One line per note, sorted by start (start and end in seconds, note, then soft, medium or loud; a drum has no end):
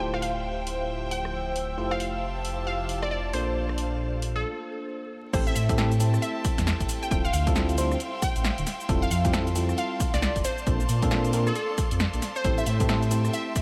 0.00 1.76 D1 medium
0.00 2.41 F3 medium
0.00 1.76 A3 medium
0.00 1.76 E4 medium
0.00 1.76 F4 medium
0.00 0.72 G4 medium
0.00 1.76 G4 medium
0.00 2.41 C5 medium
0.00 4.41 C5 medium
0.00 1.76 C5 medium
0.00 3.29 E5 medium
0.00 3.30 G5 medium
0.00 0.09 G5 medium
0.00 0.72 A5 medium
0.14 0.19 F5 medium
0.14 cross-stick medium
0.22 0.31 F5 medium
0.22 open hi-hat loud
0.63 2.41 G5 medium
0.63 4.15 E6 medium
0.63 open hi-hat loud
1.11 1.56 G5 medium
1.11 open hi-hat loud
1.25 cross-stick medium
1.56 open hi-hat loud
1.77 3.32 F1 medium
1.77 3.31 A3 medium
1.77 3.31 E4 medium
1.77 3.31 F4 medium
1.77 4.09 G4 medium
1.77 3.31 G4 medium
1.77 3.31 C5 medium
1.77 4.42 A5 medium
1.91 1.97 F5 medium
1.91 cross-stick medium
2.00 2.09 F5 medium
2.00 open hi-hat loud
2.44 4.44 A5 medium
2.44 open hi-hat loud
2.67 2.84 F5 medium
2.89 open hi-hat medium
3.02 3.08 D5 medium
3.02 cross-stick medium
3.11 3.20 D5 medium
3.33 4.45 A#1 medium
3.33 5.31 A#3 medium
3.33 4.44 D4 medium
3.33 5.31 D4 medium
3.33 5.31 F4 medium
3.33 5.31 A4 medium
3.33 3.51 C5 medium
3.33 5.31 C5 medium
3.33 4.44 D5 medium
3.33 4.44 F5 medium
3.33 open hi-hat medium
3.69 cross-stick medium
3.78 open hi-hat loud
4.22 open hi-hat loud
4.36 4.43 A4 medium
5.33 5.51 A1 loud
5.33 5.53 A3 medium
5.33 5.53 C4 medium
5.33 5.53 E4 medium
5.33 5.53 G4 medium
5.33 5.53 A4 loud
5.33 5.42 C5 medium
5.33 7.09 C5 medium
5.33 10.41 E5 medium
5.33 10.41 G5 medium
5.33 7.09 A5 medium
5.33 kick loud
5.33 closed hi-hat medium
5.33 crash loud
5.33 shaker soft
5.47 5.53 E5 medium
5.47 shaker soft
5.56 6.18 A2 loud
5.56 5.64 E5 medium
5.56 open hi-hat loud
5.56 shaker medium
5.69 5.77 A3 medium
5.69 5.77 C4 medium
5.69 5.77 E4 medium
5.69 5.77 G4 medium
5.69 5.77 A4 loud
5.69 kick loud
5.69 closed hi-hat medium
5.69 shaker soft
5.78 5.92 A3 loud
5.78 5.92 C4 medium
5.78 5.92 E4 medium
5.78 5.92 G4 medium
5.78 5.92 A4 loud
5.78 snare loud
5.78 shaker soft
5.92 closed hi-hat soft
5.92 shaker soft
6.00 7.09 A3 medium
6.00 7.09 C4 medium
6.00 7.09 E4 medium
6.00 7.09 G4 medium
6.00 7.09 A4 medium
6.00 open hi-hat loud
6.00 shaker medium
6.14 cross-stick medium
6.14 shaker soft
6.22 6.40 E5 medium
6.22 closed hi-hat medium
6.22 shaker soft
6.45 kick loud
6.45 cross-stick medium
6.45 open hi-hat loud
6.45 shaker medium
6.58 6.73 E2 medium
6.58 snare medium
6.58 closed hi-hat medium
6.58 shaker soft
6.67 snare loud
6.67 shaker soft
6.80 6.87 A1 medium
6.80 kick medium
6.80 closed hi-hat medium
6.80 shaker soft
6.89 open hi-hat loud
6.89 shaker medium
7.03 7.08 G5 medium
7.03 shaker soft
7.11 7.29 D1 loud
7.11 7.25 G3 medium
7.11 7.25 C4 medium
7.11 7.25 E4 medium
7.11 7.25 F4 medium
7.11 7.25 A4 medium
7.11 8.87 F5 medium
7.11 7.20 G5 medium
7.11 13.62 C6 medium
7.11 kick loud
7.11 closed hi-hat medium
7.11 shaker soft
7.25 7.30 F5 medium
7.25 shaker soft
7.33 7.96 D2 loud
7.33 7.42 F5 medium
7.33 open hi-hat loud
7.33 shaker medium
7.47 7.54 G3 loud
7.47 7.54 C4 medium
7.47 7.54 E4 medium
7.47 7.54 F4 medium
7.47 7.54 A4 loud
7.47 kick loud
7.47 closed hi-hat medium
7.47 shaker soft
7.56 7.76 G3 loud
7.56 7.76 C4 medium
7.56 7.76 E4 medium
7.56 7.76 F4 medium
7.56 7.76 A4 loud
7.56 snare loud
7.56 shaker soft
7.69 closed hi-hat soft
7.69 shaker soft
7.78 7.97 G3 medium
7.78 7.97 C4 medium
7.78 7.97 E4 medium
7.78 7.97 F4 medium
7.78 7.97 C5 medium
7.78 open hi-hat loud
7.78 shaker medium
7.92 cross-stick medium
7.92 shaker soft
8.00 closed hi-hat medium
8.00 shaker soft
8.22 8.67 G5 loud
8.22 kick loud
8.22 cross-stick medium
8.22 open hi-hat loud
8.22 shaker medium
8.36 8.50 A1 medium
8.36 closed hi-hat medium
8.36 shaker soft
8.44 snare loud
8.44 shaker soft
8.58 8.64 D1 medium
8.58 closed hi-hat medium
8.58 shaker soft
8.67 snare medium
8.67 open hi-hat loud
8.67 shaker medium
8.80 shaker soft
8.89 9.06 F1 loud
8.89 9.08 G3 medium
8.89 9.08 C4 medium
8.89 9.08 E4 medium
8.89 9.08 F4 medium
8.89 9.08 A4 loud
8.89 13.62 A5 medium
8.89 kick loud
8.89 closed hi-hat medium
8.89 shaker soft
9.02 9.08 F5 medium
9.02 shaker soft
9.11 9.74 F2 loud
9.11 9.20 F5 medium
9.11 open hi-hat loud
9.11 shaker medium
9.25 9.32 G3 medium
9.25 9.32 C4 medium
9.25 9.32 E4 medium
9.25 9.32 F4 medium
9.25 9.32 G4 loud
9.25 kick loud
9.25 closed hi-hat medium
9.25 shaker soft
9.33 9.47 G3 medium
9.33 9.47 C4 medium
9.33 9.47 E4 medium
9.33 9.47 F4 medium
9.33 9.47 A4 loud
9.33 snare loud
9.33 shaker soft
9.47 closed hi-hat soft
9.47 shaker soft
9.56 10.44 G3 medium
9.56 10.43 C4 medium
9.56 10.44 E4 medium
9.56 10.43 F4 medium
9.56 10.43 A4 medium
9.56 open hi-hat loud
9.56 shaker medium
9.69 cross-stick medium
9.69 shaker soft
9.78 9.95 F5 medium
9.78 closed hi-hat medium
9.78 shaker soft
10.00 kick loud
10.00 cross-stick medium
10.00 open hi-hat loud
10.00 shaker medium
10.14 10.28 C2 medium
10.14 10.19 D5 medium
10.14 snare medium
10.14 closed hi-hat medium
10.14 shaker soft
10.22 10.31 D5 medium
10.22 snare loud
10.22 shaker soft
10.36 10.42 F1 medium
10.36 kick medium
10.36 closed hi-hat medium
10.36 shaker soft
10.44 10.62 C5 loud
10.44 12.43 D5 medium
10.44 12.43 F5 medium
10.44 open hi-hat loud
10.44 shaker medium
10.58 shaker soft
10.67 10.84 A#1 loud
10.67 10.81 A#3 medium
10.67 10.81 C4 medium
10.67 10.81 D4 medium
10.67 10.81 F4 medium
10.67 10.81 A4 medium
10.67 kick loud
10.67 closed hi-hat medium
10.67 shaker soft
10.80 shaker soft
10.89 11.52 A#2 loud
10.89 open hi-hat loud
10.89 shaker medium
11.02 11.09 A#3 loud
11.02 11.09 C4 medium
11.02 11.09 D4 medium
11.02 11.09 F4 medium
11.02 11.09 A4 loud
11.02 kick loud
11.02 closed hi-hat medium
11.02 shaker soft
11.11 11.31 A#3 loud
11.11 11.31 C4 medium
11.11 11.31 D4 medium
11.11 11.31 F4 medium
11.11 11.31 A4 loud
11.11 snare loud
11.11 shaker soft
11.25 closed hi-hat soft
11.25 shaker soft
11.33 11.53 A#3 medium
11.33 11.53 C4 medium
11.33 11.53 D4 medium
11.33 11.53 F4 medium
11.33 11.53 A#4 medium
11.33 open hi-hat loud
11.33 shaker medium
11.47 11.54 A4 medium
11.47 cross-stick medium
11.47 shaker soft
11.55 11.73 A4 medium
11.55 closed hi-hat medium
11.55 shaker soft
11.78 kick loud
11.78 cross-stick medium
11.78 open hi-hat loud
11.78 shaker medium
11.91 12.06 F2 medium
11.91 closed hi-hat medium
11.91 shaker soft
12.00 snare loud
12.00 shaker soft
12.13 12.20 A#1 medium
12.13 closed hi-hat medium
12.13 shaker soft
12.22 snare medium
12.22 open hi-hat loud
12.22 shaker medium
12.36 12.42 C5 medium
12.36 shaker soft
12.44 12.62 A1 loud
12.44 12.64 A3 medium
12.44 12.64 C4 medium
12.44 12.64 E4 medium
12.44 12.64 G4 medium
12.44 12.64 A4 loud
12.44 12.53 C5 medium
12.44 13.62 E5 medium
12.44 13.62 G5 medium
12.44 kick loud
12.44 closed hi-hat medium
12.44 shaker soft
12.58 12.64 E5 medium
12.58 shaker soft
12.66 13.29 A2 loud
12.66 12.75 E5 medium
12.66 open hi-hat loud
12.66 shaker medium
12.80 12.88 A3 medium
12.80 12.88 C4 medium
12.80 12.88 E4 medium
12.80 12.88 G4 medium
12.80 12.88 A4 loud
12.80 kick loud
12.80 closed hi-hat medium
12.80 shaker soft
12.89 13.03 A3 loud
12.89 13.03 C4 medium
12.89 13.03 E4 medium
12.89 13.03 G4 medium
12.89 13.03 A4 loud
12.89 snare loud
12.89 shaker soft
13.03 closed hi-hat soft
13.03 shaker soft
13.11 13.62 A3 medium
13.11 13.62 C4 medium
13.11 13.62 E4 medium
13.11 13.62 G4 medium
13.11 13.62 A4 medium
13.11 open hi-hat loud
13.11 shaker medium
13.25 cross-stick medium
13.25 shaker soft
13.34 13.51 E5 medium
13.34 closed hi-hat medium
13.34 shaker soft
13.56 kick loud
13.56 cross-stick soft
13.56 open hi-hat loud
13.56 shaker medium